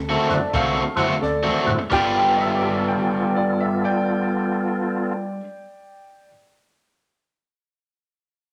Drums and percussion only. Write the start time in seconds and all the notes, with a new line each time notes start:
0.31 snare, closed hi-hat
0.54 kick, closed hi-hat
0.97 closed hi-hat
1.22 snare
1.44 mid tom
1.68 floor tom
1.91 kick, crash